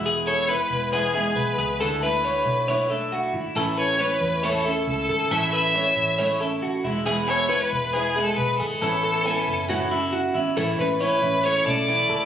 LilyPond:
<<
  \new Staff \with { instrumentName = "Violin" } { \time 4/4 \key a \major \tempo 4 = 137 r8 cis''8 b'4 gis'4 b'4 | a'8 b'2 r4. | r8 cis''8 b'4 a'4 a'4 | e''8 e''2 r4. |
r8 cis''8. b'8. \tuplet 3/2 { gis'4 a'8 } b'8 a'8~ | a'2. r4 | r8 b'8 b'4 cis''8 d''4. | }
  \new Staff \with { instrumentName = "Clean electric guitar" } { \time 4/4 \key a \major gis'8 a'8 b'4 b'8 gis'4 gis'8 | a'8 b'8 cis''4 cis''8 a'8 fis'8 e'8 | a'8 b'8 cis''4 cis''8 a'4 a'8 | a'8 b'8 cis''4 cis''8 a'8 fis'8 e'8 |
gis'8 a'8 b'4 b'8 gis'4 gis'8 | a'8 a'8 gis''4 fis'8 e'8 fis'8 e'8 | a'8 b'8 cis''4 cis''8 a'4 a'8 | }
  \new Staff \with { instrumentName = "Steel-string acoustic guitar" } { \time 4/4 \key a \major <e, b, e gis b e'>4 <e gis b e'>4 <e, b, e gis b e'>8 <e gis b e'>4. | <d a d' e'>8 <a d' e'>8 <d a d' e'>4 <d a d' e'>8 <a d' e'>4. | <a, e a cis' e'>4 <e a cis' e'>4 <a, e a cis' e'>8 <a cis' e'>4. | <a, e a cis' e'>4 <e a cis' e'>4 <a, e a cis' e'>8 <a cis' e'>4 <e gis b e'>8 |
<e, b, e gis b e'>4 <e gis b e'>4 <e, b, e gis b e'>8 <e gis b e'>4. | <a, e b cis' e'>4 <e b cis' e'>4 <a, e b cis' e'>8 <b cis' e'>4 <b cis' e'>8 | <a, e a cis' e'>8 <a cis' e'>8 <a, e a cis' e'>8 <a cis' e'>8 <e a cis' e'>8 <a cis' e'>8 <a, e a e'>4 | }
  \new Staff \with { instrumentName = "Fingered electric bass" } { \clef bass \time 4/4 \key a \major e,,4. e,,4. b,,8 cis,8 | d,4. b,,2 gis,,8 | a,,4. e,4. cis,8 gis,,8 | a,,4. a,,2 e,,8~ |
e,,4. e,,4. b,,8 gis,,8 | a,,4. fis,,2 gis,,8 | a,,8 a,,8. r16 a,,4 b,,4 gis,,8 | }
>>